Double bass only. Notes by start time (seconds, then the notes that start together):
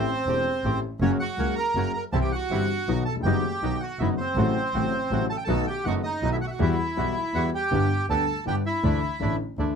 0.26 E1
0.64 A1
1.00 F#1
1.38 C#2
1.75 F#1
2.13 C2
2.50 G1
2.87 B1
3.24 F#1
3.62 B1
3.99 F#1
4.36 A1
4.74 A1
5.11 A1
5.48 B1
5.85 F#1
6.21 B1
6.60 E2
6.97 B1
7.34 E2
7.72 G1
8.09 D2
8.46 G1
8.84 D2
9.21 A1
9.57 D2